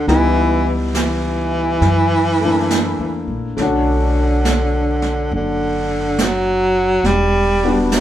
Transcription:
Already playing: D4
0.07 C#2 E3 G3 B3 D#4 E4, brush sweep, snare
0.94 E3, snare, hi-hat pedal
1.81 F#2, brush sweep, snare
2.40 A3 A#3 D4
2.45 E4
2.70 snare, hi-hat pedal
2.99 E2
3.28 A#1
3.57 B1 A3 C#4, brush sweep, snare
3.61 D3 D4 F#4
4.45 snare, hi-hat pedal
5.02 snare
5.32 F#1 D3, brush sweep
6.18 snare, hi-hat pedal
6.22 F#3
7.04 E1 G3, brush sweep, snare
7.64 G3 B3 D4 F#4
7.92 G3, snare, hi-hat pedal

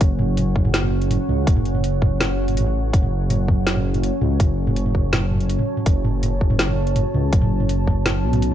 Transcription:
Already playing: F#3 C#4 C#5 F#5
0.01 F#1, kick, closed hi-hat
0.19 mid tom
0.37 closed hi-hat, mid tom
0.56 kick
0.65 mid tom
0.74 snare, closed hi-hat
0.83 mid tom
1.02 closed hi-hat
1.11 closed hi-hat, mid tom
1.29 C#2, mid tom
1.47 F#1, kick, closed hi-hat
1.56 mid tom
1.65 closed hi-hat
1.75 mid tom
1.84 closed hi-hat
2.02 kick, mid tom
2.21 snare, closed hi-hat, mid tom
2.48 closed hi-hat, mid tom
2.54 A1, closed hi-hat, mid tom
2.60 mid tom
2.66 mid tom
2.75 A1
2.93 F#1, kick, closed hi-hat
3.03 mid tom
3.30 closed hi-hat, mid tom
3.48 kick, mid tom
3.67 snare, closed hi-hat
3.76 A5, mid tom
3.94 closed hi-hat, mid tom
4.03 closed hi-hat
4.21 C#2, mid tom
4.40 F#1, kick, closed hi-hat, mid tom
4.67 mid tom
4.76 closed hi-hat
4.86 mid tom
4.90 mid tom
4.95 kick, mid tom
4.99 mid tom
5.13 snare, closed hi-hat, mid tom
5.31 mid tom
5.34 mid tom
5.37 closed hi-hat, mid tom
5.40 mid tom
5.44 mid tom
5.47 closed hi-hat, mid tom
5.59 mid tom
5.77 mid tom
5.86 F#1, kick, closed hi-hat
6.04 mid tom
6.23 closed hi-hat, mid tom
6.41 kick
6.50 mid tom
6.59 snare, closed hi-hat
6.68 mid tom
6.87 closed hi-hat
6.96 closed hi-hat, mid tom
7.14 C#2, mid tom
7.33 F#1, kick, closed hi-hat
7.42 mid tom
7.60 mid tom
7.69 closed hi-hat
7.87 kick, mid tom
8.06 snare, closed hi-hat, mid tom
8.24 B1
8.33 closed hi-hat, mid tom
8.42 closed hi-hat

